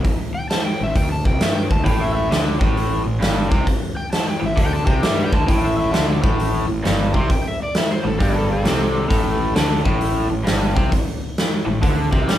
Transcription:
0.05 kick, open hi-hat
0.35 G5
0.50 A5, snare, open hi-hat
0.66 G5
0.81 A1 E5
0.96 D2 G5, kick, open hi-hat
1.12 A5
1.25 C2 G5, kick
1.40 G2 E5, snare, open hi-hat
1.55 G5
1.70 D2 A5, kick
1.85 A1 A2 G5, kick, open hi-hat
2.01 E5
2.15 E5
2.31 D2 D3, snare, open hi-hat
2.60 A1 A2, kick
2.77 open hi-hat
3.05 A1 A2
3.21 G1 G2, snare, open hi-hat
3.49 C2 C3, kick
3.67 kick, open hi-hat
3.97 G5
4.12 A5, snare, open hi-hat
4.30 G5
4.41 A1 A2
4.46 E5
4.56 D2 D3, kick, open hi-hat
4.62 G5
4.76 A5
4.86 C2 C3, kick
4.91 G5
5.02 G2 G3 E5, snare, open hi-hat
5.21 G5
5.31 D2 D3, kick
5.37 A5
5.47 A1 A2 G5, kick, open hi-hat
5.64 E5
5.79 E5
5.93 D2 D3, snare, open hi-hat
6.22 A1 A2, kick
6.39 open hi-hat
6.68 A1 A2
6.84 G1 G2, snare, open hi-hat
7.13 C2 C3 C6, kick
7.30 G5, kick, open hi-hat
7.48 E5
7.63 D5
7.74 E5, snare, open hi-hat
7.91 C5
8.04 A1 A2 A4
8.19 G1 G2 G4, kick, open hi-hat
8.39 A4
8.53 A4
8.64 C2 C3, snare, open hi-hat
9.09 A1 A2, kick, open hi-hat
9.56 D2 D3, snare, open hi-hat
9.85 A1 A2, kick
10.01 open hi-hat
10.30 A1 A2
10.44 G1 G2, snare, open hi-hat
10.74 C2 C3, kick
10.92 kick, open hi-hat
11.38 snare, open hi-hat
11.66 A1 A2
11.83 D2 D3, kick, open hi-hat
12.12 C2 C3, kick
12.28 G2 G3, snare, open hi-hat

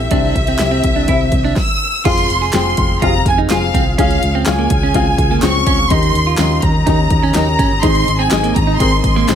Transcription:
Already playing: C3 E3 G3 C4 E4 G4 A4 E5
0.11 C2 C3 C4 D4 G4 E5, kick, closed hi-hat
0.36 C2, kick, closed hi-hat
0.47 C4, closed hi-hat
0.59 C2 C4 G4 E5, snare, clap, closed hi-hat
0.71 C4
0.84 C2, kick, closed hi-hat
0.96 D4
1.08 C2 C4 E4 G4 E5, kick, closed hi-hat
1.32 C2, kick, closed hi-hat
1.44 D4, snare
1.56 E6, kick, snare
2.04 F1 C3 F3 G#3 C4 F4 G#4 F5, kick, closed hi-hat, crash
2.09 C6
2.18 closed hi-hat
2.30 F1, closed hi-hat
2.42 G#4
2.53 F1 C4 F4 G#4 G5, snare, clap, closed hi-hat
2.57 C6
2.77 F1, kick, closed hi-hat
3.02 F1 C4 F4 G4 F5 A#5, kick, closed hi-hat
3.09 G#4
3.26 F1 G#5, kick, closed hi-hat
3.38 D#4
3.50 F1 C4 F4 G#4 F5 G#5, snare, clap, closed hi-hat
3.74 C2 C4, kick, closed hi-hat
3.97 C#2 C#3 C#4 F4 G#4 F5, kick, closed hi-hat
4.11 closed hi-hat
4.23 C#2, closed hi-hat
4.35 C4
4.46 C#2 C#4 F4 G#4 F5 G#5, snare, clap, closed hi-hat
4.59 A#3
4.70 C#2, kick, closed hi-hat
4.83 C#4
4.94 C#2 C4 C#4 F4 G#4 F5, kick, closed hi-hat
5.18 C#2, kick, closed hi-hat
5.31 A#3
5.42 C#2 C4 C#4 F4 G#4 C#6, snare, clap, closed hi-hat
5.66 C#2 C#4, kick, closed hi-hat
5.90 D#2 C#3 D#3 G3 A#3 C#4 D#4 G4 A#4 D#5 C6, kick, closed hi-hat
6.03 closed hi-hat
6.14 D#2, closed hi-hat
6.27 F4
6.38 D#2 C#4 G4 A#4 D#5 C6, snare, clap, closed hi-hat
6.62 D#2 A#5, kick, closed hi-hat
6.86 D#2 C#4 D#4 G4 A#4 D#5, kick, closed hi-hat
7.10 D#2, kick, closed hi-hat
7.23 C#4
7.34 D#2 C#4 D#4 G4 A#4 D#5 A#5, snare, clap, closed hi-hat
7.59 G1 C#4, kick, closed hi-hat
7.83 G#1 G#2 C3 D#3 G#3 C4 D#4 G#4 D#5 C6, kick, closed hi-hat
7.95 closed hi-hat
8.08 G#1, closed hi-hat
8.19 C4 G#5
8.31 G#1 C4 D#4 G#4 D#5, snare, clap, closed hi-hat
8.44 A#3, closed hi-hat
8.56 G#1 A#5, kick, closed hi-hat
8.67 D#4
8.80 G#1 C4 D#4 G#4 A#4 C6, kick, closed hi-hat
9.03 G#1 C6, kick, closed hi-hat
9.16 A#3, snare
9.28 G#1 C4 D#4 G#4 C5, snare, clap, closed hi-hat

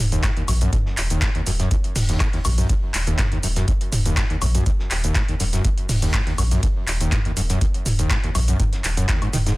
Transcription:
0.00 D#1
0.12 D#2, closed hi-hat, shaker
0.23 A#2, kick, snare, clap, closed hi-hat, high woodblock, shaker
0.37 D#2, closed hi-hat
0.48 A#1 F#2, open hi-hat, high woodblock, shaker
0.61 F#2, closed hi-hat, shaker
0.73 D#2, kick, closed hi-hat, mid tom, shaker
0.86 snare
0.97 D#1, clap, open hi-hat, shaker
1.10 D#2, closed hi-hat, shaker
1.22 A#2, kick, snare, clap, closed hi-hat, shaker
1.35 D#2, closed hi-hat
1.47 D#1 F#2, snare, open hi-hat, shaker
1.59 F#2, snare, closed hi-hat, shaker
1.71 D#2, kick, closed hi-hat, shaker
1.84 closed hi-hat
1.96 D#1, snare, mid tom, open hi-hat, shaker
2.09 D#2, closed hi-hat, shaker
2.20 A#2, kick, snare, clap, closed hi-hat, high woodblock, shaker
2.33 D#2, snare, closed hi-hat
2.45 A#1 F#2, open hi-hat, high woodblock, shaker
2.58 F#2, closed hi-hat, shaker
2.69 D#2, kick, closed hi-hat, shaker
2.94 D#1, clap, open hi-hat, shaker
3.07 D#2, closed hi-hat, shaker
3.19 A#2, kick, snare, clap, closed hi-hat, mid tom, shaker
3.32 D#2, closed hi-hat
3.43 D#1 F#2, open hi-hat, shaker
3.56 F#2, snare, closed hi-hat, shaker
3.68 D#2, kick, closed hi-hat, shaker
3.81 closed hi-hat
3.92 D#1, snare, mid tom, open hi-hat, shaker
4.06 D#2, closed hi-hat, shaker
4.17 A#2, kick, snare, clap, closed hi-hat, high woodblock, shaker
4.30 D#2, closed hi-hat
4.42 A#1 F#2, open hi-hat, high woodblock, shaker
4.55 F#2, closed hi-hat, shaker
4.66 D#2, kick, closed hi-hat, shaker
4.79 snare
4.91 D#1, clap, open hi-hat, shaker
5.04 D#2, closed hi-hat, shaker
5.15 A#2, kick, snare, clap, closed hi-hat, shaker
5.28 D#2, closed hi-hat
5.40 D#1 F#2, snare, open hi-hat, shaker
5.53 F#2, snare, closed hi-hat, shaker
5.65 D#2, kick, closed hi-hat, shaker
5.78 closed hi-hat
5.89 D#1, snare, mid tom, open hi-hat, shaker
6.02 D#2, closed hi-hat, shaker
6.14 A#2, kick, snare, clap, closed hi-hat, high woodblock, shaker
6.27 D#2, snare, closed hi-hat
6.38 A#1 F#2, open hi-hat, high woodblock, shaker
6.51 F#2, closed hi-hat, shaker
6.63 D#2, kick, closed hi-hat, shaker
6.87 D#1, clap, open hi-hat, shaker
7.01 D#2, closed hi-hat, shaker
7.12 A#2, kick, snare, clap, closed hi-hat, mid tom, shaker
7.25 D#2, closed hi-hat
7.37 D#1 F#2, open hi-hat, shaker
7.50 F#2, snare, closed hi-hat, shaker
7.61 D#2, kick, closed hi-hat, shaker
7.74 closed hi-hat
7.85 D#1, snare, mid tom, open hi-hat, shaker
7.99 D#2, closed hi-hat, shaker
8.10 A#2, kick, snare, clap, closed hi-hat, high woodblock, shaker
8.23 D#2, closed hi-hat
8.35 A#1 F#2, open hi-hat, high woodblock, shaker
8.48 F#2, closed hi-hat, shaker
8.60 D#2, kick, closed hi-hat, mid tom, shaker
8.73 snare, closed hi-hat
8.84 D#1, clap, open hi-hat, shaker
8.97 F#2, closed hi-hat, shaker
9.08 D#2, kick, snare, clap, closed hi-hat, shaker
9.22 G#2, closed hi-hat, high woodblock
9.33 D#1 D#3, snare, mid tom, open hi-hat, shaker
9.46 G#2, snare, closed hi-hat, shaker

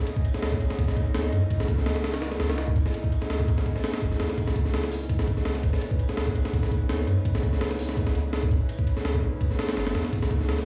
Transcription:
Already playing: C#4 D#4 E4 D#5
0.07 ride
0.16 kick
0.25 ride
0.34 snare
0.43 C#2, snare, ride
0.52 kick
0.61 ride
0.70 snare
0.79 C#2, kick, ride
0.88 snare
0.96 kick, ride
1.14 C#2, snare, ride
1.32 F#2, ride
1.50 C#2, kick, ride
1.60 snare
1.68 kick, ride
1.78 snare
1.86 C#2, snare, ride
1.96 snare
2.04 snare, ride
2.14 snare, ride
2.22 snare, ride
2.32 snare
2.40 C#2, snare, ride
2.50 snare, ride
2.58 snare, ride
2.68 kick
2.76 G#1, kick, ride
2.86 snare
2.94 ride
3.04 kick
3.12 ride
3.22 snare
3.30 C#2, snare, ride
3.40 kick
3.48 kick, ride
3.58 snare
3.66 C#2, kick, ride
3.76 snare
3.84 snare, ride
3.94 snare, ride
4.02 G#1, kick, ride
4.12 G#1, snare
4.20 E2, snare, ride
4.30 snare
4.38 C#2 B4, kick, ride
4.47 snare
4.56 kick, ride
4.65 snare
4.74 C#2, snare, ride
4.83 snare
4.92 open hi-hat
5.09 kick, ride
5.19 snare
5.27 C#2, kick, ride
5.37 snare
5.45 snare, ride
5.55 snare
5.63 G#1, kick, ride
5.73 snare
5.81 ride
5.91 kick
5.99 ride
6.09 snare
6.17 C#2, snare, ride
6.27 kick
6.35 ride
6.45 snare
6.53 C#2, kick, ride
6.63 snare
6.71 kick, ride
6.89 C#2, snare, ride
7.07 F#2, ride
7.25 C#2, kick, ride
7.35 snare
7.43 kick, ride
7.53 snare
7.61 C#2, snare, ride
7.71 snare
7.79 open hi-hat
7.89 snare
7.97 kick, ride
8.07 snare
8.15 C#2, ride
8.33 snare, ride
8.43 kick
8.51 G#1, kick, ride
8.69 ride
8.79 kick
8.87 ride
8.97 snare
9.05 C#2, snare, ride
9.15 kick
9.41 C#2, kick, ride
9.51 snare
9.59 snare, ride
9.69 snare, ride
9.77 G#1, snare, ride
9.86 G#1, snare, ride
9.95 E2, snare, ride
10.05 snare
10.13 C#2 G#4, kick, ride
10.22 snare
10.31 kick, ride
10.41 snare
10.48 C#2, snare, ride
10.58 snare

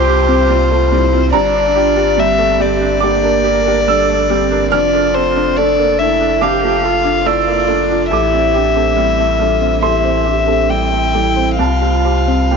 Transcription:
Already playing: C2 G2 G3 A3 C4 F4 G4 C5 G5
0.08 G4
0.28 C4
0.49 G3 F4
0.71 A3
0.92 G3 C4 E4
1.13 C4 F4
1.33 G1 G2 D4 G4 D5 A#5
1.54 D4 D5
1.75 F4 G4 G5
1.96 D4 G4
2.18 G3 C4 G4 E5
2.39 A3 D5
2.60 G3 G4 D5
2.81 D4 D5
3.00 D3 A#3 G4 D6
3.23 D4 A#4
3.44 G4 A#4
3.67 D4 G4
3.88 G3 D4 A4 E6
4.09 A3
4.30 G3 C4 G4
4.51 D4 A#4
4.71 F1 F2 D4 F4 D5 F6
4.93 D4 A4
5.14 C4 A4 C5 D5
5.35 D4
5.57 A3 D4 A4 D5
5.78 A#3 A4
5.99 A3 D4 E4 E5
6.20 D4 A4
6.41 F2 D4 G4 F5 D6
6.63 A3 F4
6.83 F4 A4
7.04 D4
7.25 A3 E4 D5 E6
7.48 A#3
7.68 A3 D4
7.90 D4 F4
8.11 A1 E4 G4 A4 E5 D6
8.33 C4 E5
8.54 D4 G4 G5
8.75 C4 A4
8.97 G3 C4 E4
9.19 A3 E5
9.39 G3 D4 F4 A4
9.60 C4 E5
9.82 E2 E4 G4 A4 E5 C6
10.03 C4 C5
10.24 D4 G4
10.46 C4 A4
10.69 G3 C4 E4 G5
10.91 A3
11.15 G3 E4 A4
11.36 C4 C5
11.59 C2 C4 F4 F5 A5
11.82 C4 G4
12.05 G4 C5
12.28 C4
12.51 G3 A4 G5

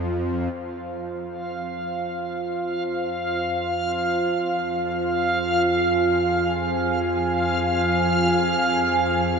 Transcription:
Already playing: F2 F3 F4 C5 F5 A#5
0.53 F2 F3 F5
4.14 G#5

